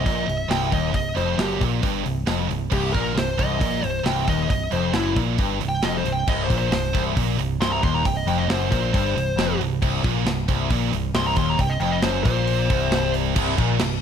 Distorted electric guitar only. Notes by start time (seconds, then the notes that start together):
0.05 A#2
0.26 C2
0.48 C2
0.72 D#2
0.93 C2
1.15 F2
1.37 F#2
1.61 A#2
1.82 G2
2.04 C2
2.27 F2
2.49 C2
2.70 C2
2.93 A#2
3.15 C2
3.38 C2
3.60 A#2
3.82 C2
4.04 C2
4.27 D#2
4.49 C2
4.71 F2
4.94 F#2
5.16 A#2
5.38 G2
5.61 C2
5.83 F2
6.06 C2
6.28 C2
6.50 A#2
6.71 C2
6.93 C2
7.15 A#2
7.39 C2
7.61 C2
7.82 D#2
8.05 C2
8.27 F2
8.49 F#2
8.72 A#2
8.93 G2
9.16 C2
9.38 F2
9.61 C2
9.82 C2
10.05 A#2
10.26 C2
10.48 C2
10.71 A#2
10.93 C2
11.15 C2
11.38 D#2
11.60 C2
11.82 F2
12.03 F#2
12.26 A#2
12.69 C2
13.35 C2
13.57 A#2
13.80 C2